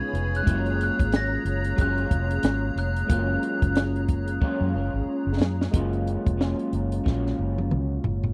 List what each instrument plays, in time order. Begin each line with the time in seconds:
Already playing: clean electric guitar C#3 G#3 B3 F4, tine electric piano G#3 B3 D#4 F4, analog synth pad G#4 C#5 G#5 B5, glockenspiel G#6
0.13 fingered electric bass F1, closed hi-hat
0.35 glockenspiel F#6, closed hi-hat
0.43 fingered electric bass F#1, clean electric guitar F#3, tine electric piano G#3 A#3 C#4, analog synth pad A#5, kick
0.47 clean electric guitar A#3 C#4, tine electric piano E4, closed hi-hat
0.52 clean electric guitar F4, tine electric piano F4
0.66 closed hi-hat
0.81 glockenspiel F#6, closed hi-hat
0.99 fingered electric bass G#1, kick, closed hi-hat
1.12 glockenspiel A#6, snare, closed hi-hat
1.45 fingered electric bass F#1, closed hi-hat
1.64 closed hi-hat
1.76 fingered electric bass F#1, clean electric guitar F#3 A#3, kick, closed hi-hat
1.81 clean electric guitar C#4 F4, glockenspiel F#6
1.98 closed hi-hat
2.11 fingered electric bass F1, kick, closed hi-hat
2.31 closed hi-hat
2.43 fingered electric bass G#1, snare, closed hi-hat
2.75 fingered electric bass F1, glockenspiel F#6, closed hi-hat
2.96 closed hi-hat
3.07 fingered electric bass F#1, clean electric guitar F#3 A#3, tine electric piano G#3 A#3 C#4, kick, closed hi-hat
3.11 clean electric guitar C#4 F4, tine electric piano F4, glockenspiel F#6
3.43 closed hi-hat
3.62 fingered electric bass F#1, kick, closed hi-hat
3.75 snare, closed hi-hat
3.96 closed hi-hat
4.08 kick, closed hi-hat
4.28 closed hi-hat
4.41 clean electric guitar F#3 A#3 C#4 F4, kick
4.61 fingered electric bass F#2
4.74 fingered electric bass F#1, clean electric guitar A#3 C#4 F4
4.94 fingered electric bass G#1
5.06 muted fingered electric bass stroke
5.27 fingered electric bass F#1
5.40 fingered electric bass F#2, snare
5.61 snare
5.71 fingered electric bass F#1, clean electric guitar F#3 A#3 C#4, tine electric piano G#3 A#3 C#4, kick, closed hi-hat
5.75 clean electric guitar F4, tine electric piano F4
5.93 closed hi-hat
6.07 closed hi-hat
6.26 fingered electric bass F1, kick, closed hi-hat
6.37 clean electric guitar F#3 A#3 C#4, snare
6.41 clean electric guitar F4
6.59 closed hi-hat
6.73 fingered electric bass F#1, closed hi-hat
6.92 closed hi-hat
7.04 fingered electric bass A#1, clean electric guitar F#3 A#3 C#4, kick, snare
7.10 clean electric guitar F4
7.26 snare
7.39 fingered electric bass F#1
7.58 high tom
7.71 fingered electric bass C#2, mid tom
8.04 fingered electric bass F#1, floor tom
8.24 floor tom